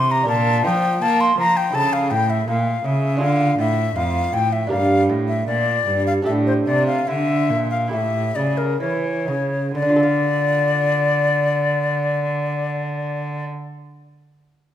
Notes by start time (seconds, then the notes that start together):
Already playing: C3 A3 E4 A4 C6
0.11 A#5
0.23 D4 A#4
0.28 A#2 A5
0.64 F3 G5
1.01 A#3 A5
1.21 C6
1.38 F3 A#5
1.57 G5
1.70 E4 A4
1.75 C#3 A5
1.93 F5
2.11 A2 G5
2.30 E5
2.48 A#2 F5
2.84 C#3 E5
3.17 D4 F4 A4
3.21 D3 F5
3.58 A2 E5
3.96 F2 F5
4.33 A2 G5
4.53 E5
4.67 D4 G4 A#4
4.71 G2 F5
5.09 A2
5.28 E5
5.47 A#2 D5
5.87 G2
6.07 F5
6.22 A2 D4 G4 A4 E5
6.27 A2
6.47 C5
6.66 C3 D5
6.87 F5
7.07 D3 E5
7.50 A#2
7.71 F5
7.88 E4 G4 A4
7.92 A2 E5
8.35 C#3 D5
8.57 A#4
8.80 E3 C#5
9.28 C#3
9.75 D3 D5
9.82 D4
9.89 F4
9.96 A4
10.03 F5